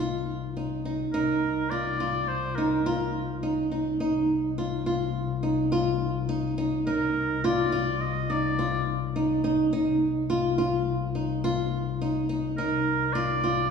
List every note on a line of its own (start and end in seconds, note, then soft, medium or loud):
0.00 1.10 C2 medium
0.00 0.48 F4 medium
0.57 0.81 D#4 medium
0.85 1.10 D#4 medium
1.13 4.00 C2 medium
1.13 1.63 D#4 medium
1.13 1.72 A#4 medium
1.70 1.96 F4 medium
1.70 2.29 D5 medium
2.00 2.49 F4 medium
2.28 2.57 C5 medium
2.56 2.82 D#4 medium
2.56 3.14 A#4 medium
2.86 3.35 F4 medium
3.43 3.67 D#4 medium
3.72 3.96 D#4 medium
4.00 6.87 C2 medium
4.00 4.49 D#4 medium
4.58 4.82 F4 medium
4.86 5.35 F4 medium
5.43 5.68 D#4 medium
5.72 6.21 F4 medium
6.29 6.53 D#4 medium
6.58 6.82 D#4 medium
6.87 9.73 C2 medium
6.87 7.35 D#4 medium
6.87 7.47 A#4 medium
7.44 7.68 F4 medium
7.44 8.03 D5 medium
7.72 8.21 F4 medium
8.01 8.32 D#5 medium
8.30 8.54 D#4 medium
8.30 8.87 D5 medium
8.59 9.07 F4 medium
9.16 9.40 D#4 medium
9.44 9.68 D#4 medium
9.73 12.58 C2 medium
9.73 10.21 D#4 medium
10.30 10.54 F4 medium
10.58 11.07 F4 medium
11.15 11.39 D#4 medium
11.44 11.93 F4 medium
12.01 12.26 D#4 medium
12.29 12.54 D#4 medium
12.57 13.71 C2 medium
12.57 13.07 D#4 medium
12.57 13.15 A#4 medium
13.13 13.39 F4 medium
13.13 13.69 D5 medium
13.44 13.71 F4 medium